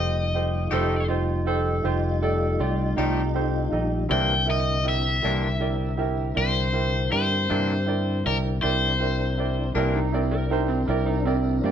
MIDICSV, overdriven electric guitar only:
0, 0, Header, 1, 2, 480
1, 0, Start_track
1, 0, Tempo, 753769
1, 2616, Time_signature, 12, 3, 24, 8
1, 7460, End_track
2, 0, Start_track
2, 0, Title_t, "Overdriven electric guitar"
2, 0, Program_c, 0, 29
2, 0, Note_on_c, 0, 75, 98
2, 675, Note_off_c, 0, 75, 0
2, 2623, Note_on_c, 0, 79, 97
2, 2843, Note_off_c, 0, 79, 0
2, 2869, Note_on_c, 0, 75, 82
2, 3086, Note_off_c, 0, 75, 0
2, 3112, Note_on_c, 0, 76, 81
2, 4038, Note_off_c, 0, 76, 0
2, 4060, Note_on_c, 0, 72, 86
2, 4528, Note_off_c, 0, 72, 0
2, 4536, Note_on_c, 0, 72, 83
2, 5261, Note_off_c, 0, 72, 0
2, 5263, Note_on_c, 0, 70, 77
2, 5327, Note_off_c, 0, 70, 0
2, 5492, Note_on_c, 0, 72, 73
2, 6187, Note_off_c, 0, 72, 0
2, 7460, End_track
0, 0, End_of_file